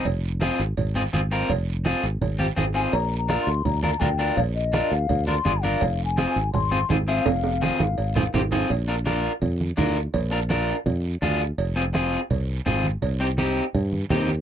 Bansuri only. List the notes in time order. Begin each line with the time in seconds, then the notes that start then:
2.76 G#5
2.93 A#5
3.18 A#5
3.42 C6
3.65 A#5
3.83 A#5
4.01 G5
4.37 F5
4.55 D#5
4.91 F5
5.27 C6
5.63 F5
6.05 G#5
6.30 G#5
6.53 C6
7.08 E5
7.21 F5